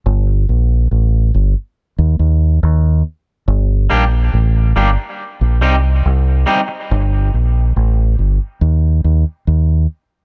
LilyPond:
<<
  \new Staff \with { instrumentName = "Clean electric guitar" } { \time 4/4 \key g \minor \tempo 4 = 70 r1 | r8 <g bes d' g'>8 r8 <g bes d' g'>8 r8 <g c' ees' g'>8 r8 <g c' ees' g'>8 | r1 | }
  \new Staff \with { instrumentName = "Fingered electric bass" } { \clef bass \time 4/4 \key g \minor g,,8 bes,,8 a,,8 g,,16 r8 ees,16 ees,8 ees,8 r8 | g,,8 bes,,8 a,,8 g,,16 r8 bes,,16 c,8 c,8 r8 | g,,8 bes,,8 a,,8 g,,16 r16 ees,8 ees,16 r16 ees,8 r8 | }
>>